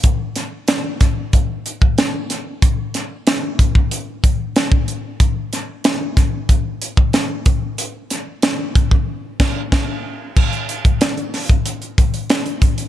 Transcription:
\new DrumStaff \with { instrumentName = "Drums" } \drummode { \time 4/4 \tempo 4 = 93 <hh bd>8 <hh sn>8 <hh sn>8 <hh bd sn>8 <hh bd>8 hh16 bd16 <hh sn>8 <hh sn>8 | <hh bd>8 <hh sn>8 <hh sn>8 <hh bd>16 bd16 hh8 <hh bd>8 <hh sn>16 bd16 hh8 | <hh bd>8 <hh sn>8 <hh sn>8 <hh bd sn>8 <hh bd>8 hh16 bd16 <hh sn>8 <hh bd>8 | hh8 <hh sn>8 <hh sn>8 <hh bd>16 bd16 r8 <cymc bd sn>8 <cymc bd sn>4 |
<cymc bd>16 hh16 hh16 <hh bd>16 <hh sn>16 hh16 <hho sn>16 <hh bd>16 hh16 hh16 <hh bd>16 hh16 <hh sn>16 hh16 <hh bd>16 hh16 | }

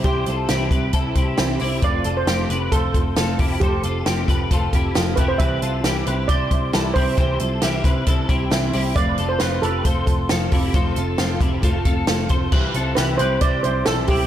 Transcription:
<<
  \new Staff \with { instrumentName = "Steel pan" } { \time 4/4 \key c \major \tempo 4 = 135 g'4. r2 r8 | d''8. c''4~ c''16 a'2 | g'4. r2 b'16 c''16 | e''4. r8 d''4. c''8~ |
c''2.~ c''8 r8 | d''8. c''16 b'8 a'2~ a'8~ | a'2. r4 | r4 b'8 c''8 d''8 c''8 a'8 g'8 | }
  \new Staff \with { instrumentName = "Clean electric guitar" } { \time 4/4 \key c \major <g' c''>8 <f' a'>8 <e' g'>8 <g' b'>8 <e' a'>8 <e' g'>4 <e' g'>8 | <f' b'>8 <f' a'>8 <c' g'>8 <g' b'>8 <a' c''>4 <f' a'>8 <e' g'>8 | <a' c''>8 <f' a'>8 <c' g'>8 <g' b'>8 <f' a'>8 <e' g'>4 <e' g'>8 | <g' b'>8 <f' a'>8 <e' g'>8 <g' b'>8 <g' c''>4 <e' a'>8 <e' g'>8 |
<g' c''>8 <f' a'>8 <e' g'>8 <g' b'>8 <e' a'>8 <e' g'>4 <e' g'>8 | <f' b'>8 <f' a'>8 <c' f'>8 <g' b'>8 <a' c''>4 <f' a'>8 <e' g'>8 | <a' c''>8 <f' a'>8 <c' f'>8 <e' g'>8 <f' a'>8 <f' a'>4 <a' c''>8 | <g' b'>8 <f' a'>8 <e' g'>8 <g' b'>8 <g' c''>4 <e' a'>8 <e' g'>8 | }
  \new Staff \with { instrumentName = "Steel-string acoustic guitar" } { \time 4/4 \key c \major <c e g c' e' c''>8 <g c' e' c''>8 <c e g c' e' c''>8 <g c' e' c''>8 <g c' e' c''>8 <g c' e' c''>8 <c e g c' e' c''>8 <g c' e' c''>8 | <f a c' f' a'>8 <c' f' a'>8 <f a c' f' a'>8 <c' f' a'>8 <a c' f' a'>8 <c' f' a'>8 <f a c' f' a'>8 <c' f' a'>8 | <f a c' f' a'>8 <c' f' a'>8 <f a c' f' a'>8 <c' f' a'>8 <a c' f' a'>8 <c' f' a'>8 <f a c' f' a'>8 <c' f' a'>8 | <c e g c' e' c''>8 <g c' e' c''>8 <c e g c' e' c''>8 <g c' e' c''>8 <g c' e' c''>8 <g c' e' c''>8 <c e g c' e' c''>8 <g c' e' c''>8 |
<c e g c' e' c''>8 <g c' e' c''>8 <c e g c' e' c''>8 <g c' e' c''>8 <g c' e' c''>8 <g c' e' c''>8 <c e g c' e' c''>8 <g c' e' c''>8 | <f a c' f' a'>8 <c' f' a'>8 <f a c' f' a'>8 <c' f' a'>8 <a c' f' a'>8 <c' f' a'>8 <f a c' f' a'>8 <c' f' a'>8 | <f a c' f' a'>8 <c' f' a'>8 <f a c' f' a'>8 <c' f' a'>8 <a c' f' a'>8 <c' f' a'>8 <f a c' f' a'>8 <c' f' a'>8 | <c e g c' e' c''>8 <g c' e' c''>8 <c e g c' e' c''>8 <g c' e' c''>8 <g c' e' c''>8 <g c' e' c''>8 <c e g c' e' c''>8 <g c' e' c''>8 | }
  \new Staff \with { instrumentName = "Picked electric bass" } { \clef bass \time 4/4 \key c \major c,8 c,8 c,8 c,8 c,8 c,8 c,8 c,8 | f,,8 f,,8 f,,8 f,,8 f,,8 f,,8 f,,8 f,,8 | f,,8 f,,8 f,,8 f,,8 f,,8 f,,8 f,,8 f,,8 | c,8 c,8 c,8 c,8 c,8 c,8 c,8 c,8 |
c,8 c,8 c,8 c,8 c,8 c,8 c,8 c,8 | f,,8 f,,8 f,,8 f,,8 f,,8 f,,8 f,,8 f,,8 | f,,8 f,,8 f,,8 f,,8 f,,8 f,,8 f,,8 f,,8 | c,8 c,8 c,8 c,8 c,8 c,8 b,,8 b,,8 | }
  \new DrumStaff \with { instrumentName = "Drums" } \drummode { \time 4/4 <hh bd>8 hh8 <hh sn>8 <hh bd>8 <hh bd>8 <hh bd>8 <hh sn>8 hho8 | <hh bd>8 hh8 <hh sn>8 hh8 <hh bd>8 <hh bd>8 <hh sn>8 <hho bd>8 | <hh bd>8 hh8 <hh sn>8 <hh bd>8 <hh bd>8 <hh bd>8 <hh sn>8 <hh bd>8 | <hh bd>8 hh8 <hh sn>8 hh8 <hh bd>8 <hh bd>8 <hh sn>8 <hho bd>8 |
<hh bd>8 hh8 <hh sn>8 <hh bd>8 <hh bd>8 <hh bd>8 <hh sn>8 hho8 | <hh bd>8 hh8 <hh sn>8 hh8 <hh bd>8 <hh bd>8 <hh sn>8 <hho bd>8 | <hh bd>8 hh8 <hh sn>8 <hh bd>8 <hh bd>8 <hh bd>8 <hh sn>8 <hh bd>8 | <cymc bd>8 hh8 <hh sn>8 hh8 <hh bd>8 hh8 <hh sn>8 <hho bd>8 | }
>>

